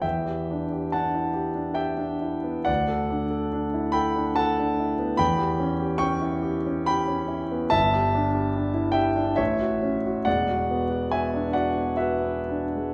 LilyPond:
\new Staff \with { instrumentName = "Grand piano" } { \time 3/4 \key e \dorian \tempo 4 = 70 << { <e'' g''>4 <fis'' a''>4 <e'' g''>4 | <d'' fis''>4. <g'' b''>8 <fis'' a''>4 | <g'' b''>4 <g'' cis'''>4 <g'' b''>4 | <e'' a''>4. <e'' g''>8 <cis'' e''>4 |
\key e \major <d'' fis''>4 <e'' gis''>8 <d'' fis''>8 <b' e''>4 | } \\ { e,16 g'16 d'16 g'16 d'16 e'16 g'16 d'16 g'16 d'16 e'16 b16 | d,16 a'16 d'16 a'16 d'16 e'16 a'16 d'16 a'16 d'16 e'16 b16 | e,16 g'16 cis'16 g'16 cis'16 e'16 g'16 cis'16 g'16 cis'16 e'16 b16 | g,,16 g'16 d'16 g'16 d'16 e'16 g'16 d'16 a,,16 fis'16 cis'16 fis'16 |
e,,16 fis'16 b16 fis'16 b16 d'16 fis'16 b16 fis'16 b16 d'16 gis16 | } >> }